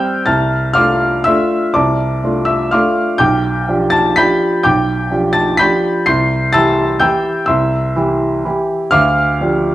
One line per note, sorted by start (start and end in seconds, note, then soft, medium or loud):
0.00 0.25 G3 medium
0.00 0.25 C4 medium
0.00 0.25 G4 medium
0.00 0.24 G5 medium
0.00 0.25 E6 medium
0.00 0.28 G6 loud
0.26 0.75 C2 medium
0.26 0.72 A5 medium
0.26 0.72 F6 medium
0.26 0.75 A6 medium
0.73 1.23 A3 medium
0.73 1.22 D4 medium
0.73 1.23 F4 medium
0.73 1.22 F5 medium
0.73 1.22 D6 medium
0.73 1.25 F6 loud
1.24 1.72 A3 medium
1.24 1.72 D4 medium
1.24 1.72 F4 medium
1.24 1.72 E5 medium
1.24 1.75 E6 loud
1.74 2.22 C2 medium
1.74 2.19 D5 medium
1.74 2.20 A5 medium
1.74 2.23 D6 medium
2.23 2.68 A3 medium
2.23 2.68 D4 medium
2.23 2.68 F4 medium
2.45 2.70 E5 medium
2.45 2.71 E6 medium
2.71 3.17 A3 medium
2.71 3.17 D4 medium
2.71 3.17 F4 medium
2.71 3.17 F5 medium
2.71 3.17 D6 medium
2.71 3.20 F6 medium
3.18 3.67 B1 medium
3.18 3.88 G5 medium
3.18 3.88 D6 medium
3.18 3.92 G6 loud
3.69 4.14 F3 medium
3.69 4.14 D4 medium
3.69 4.14 G4 medium
3.90 4.15 A5 medium
3.90 4.16 A6 loud
4.16 4.62 F3 medium
4.16 4.62 D4 medium
4.16 4.62 G4 medium
4.16 4.62 B5 medium
4.16 4.62 G6 medium
4.16 4.64 B6 loud
4.63 5.11 B1 medium
4.63 5.31 G5 medium
4.63 5.31 D6 medium
4.63 5.35 G6 medium
5.11 5.56 F3 medium
5.11 5.56 D4 medium
5.11 5.56 G4 medium
5.33 5.58 A5 medium
5.33 5.59 A6 loud
5.57 6.03 F3 medium
5.57 6.03 D4 medium
5.57 6.03 G4 medium
5.57 6.03 B5 medium
5.57 6.04 G6 medium
5.57 6.06 B6 loud
6.06 6.53 C2 medium
6.06 6.50 C6 medium
6.06 6.50 G6 medium
6.06 6.53 C7 loud
6.53 6.99 E3 medium
6.53 6.99 E4 medium
6.53 6.99 G4 medium
6.53 6.98 A5 medium
6.53 6.99 E6 medium
6.53 7.01 A6 loud
7.00 7.45 E3 medium
7.00 7.45 E4 medium
7.00 7.45 G4 medium
7.00 7.45 G5 medium
7.00 7.44 E6 medium
7.00 7.48 G6 loud
7.46 7.94 C2 medium
7.46 7.92 E5 medium
7.46 7.92 C6 medium
7.46 7.94 E6 medium
7.96 8.41 E3 medium
7.96 8.42 E4 medium
7.96 8.42 G4 medium
8.45 8.89 E3 medium
8.45 8.90 E4 medium
8.45 8.90 G4 medium
8.91 9.39 D2 medium
8.91 9.75 F5 medium
8.91 9.75 D6 medium
8.91 9.75 F6 loud
9.40 9.75 F3 medium
9.40 9.75 D4 medium
9.40 9.75 G4 medium